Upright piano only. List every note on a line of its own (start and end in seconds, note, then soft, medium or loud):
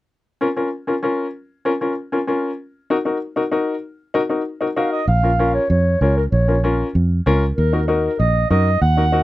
0.41 0.46 C#4 medium
0.41 0.46 F4 medium
0.41 0.47 A#4 medium
0.56 0.67 C#4 medium
0.56 0.67 F4 medium
0.56 0.68 A#4 medium
0.87 0.93 C#4 medium
0.87 0.93 F4 medium
0.87 0.93 A#4 medium
1.03 1.25 C#4 medium
1.03 1.25 F4 medium
1.03 1.25 A#4 medium
1.65 1.71 C#4 medium
1.65 1.71 F4 medium
1.65 1.71 A#4 medium
1.81 1.92 C#4 medium
1.81 1.92 F4 medium
1.81 1.92 A#4 medium
2.12 2.18 C#4 medium
2.12 2.18 F4 medium
2.12 2.18 A#4 medium
2.27 2.49 C#4 medium
2.27 2.50 F4 medium
2.27 2.50 A#4 medium
2.90 2.96 D#4 medium
2.90 2.96 F#4 medium
2.90 2.96 A#4 medium
3.05 3.16 D#4 medium
3.05 3.16 F#4 medium
3.05 3.17 A#4 medium
3.36 3.42 D#4 medium
3.36 3.42 F#4 medium
3.36 3.42 A#4 medium
3.52 3.74 D#4 medium
3.52 3.74 F#4 medium
3.52 3.74 A#4 medium
4.14 4.20 D#4 medium
4.14 4.20 F#4 medium
4.14 4.20 A#4 medium
4.30 4.41 D#4 medium
4.30 4.41 F#4 medium
4.30 4.41 A#4 medium
4.61 4.66 D#4 medium
4.61 4.67 F#4 medium
4.61 4.67 A#4 medium
4.76 4.98 D#4 medium
4.76 4.99 F#4 medium
4.76 4.99 A#4 medium
5.23 5.29 C#4 medium
5.23 5.29 F4 medium
5.23 5.29 A#4 medium
5.39 5.61 C#4 medium
5.39 5.61 F4 medium
5.39 5.61 A#4 medium
6.01 6.18 C#4 medium
6.01 6.18 F4 medium
6.01 6.18 A#4 medium
6.48 6.54 C#4 medium
6.48 6.54 F4 medium
6.48 6.54 A#4 medium
6.64 6.86 C#4 medium
6.64 6.86 F4 medium
6.64 6.86 A#4 medium
7.26 7.42 C#4 medium
7.26 7.43 F4 medium
7.26 7.43 A#4 medium
7.73 7.78 D#4 medium
7.73 7.78 F#4 medium
7.73 7.79 A#4 medium
7.88 8.10 D#4 medium
7.88 8.10 F#4 medium
7.88 8.10 A#4 medium
8.51 8.67 D#4 medium
8.51 8.67 F#4 medium
8.51 8.67 A#4 medium
8.97 9.03 D#4 medium
8.97 9.03 F#4 medium
8.97 9.03 A#4 medium
9.12 9.23 D#4 medium
9.12 9.23 F#4 medium
9.12 9.23 A#4 medium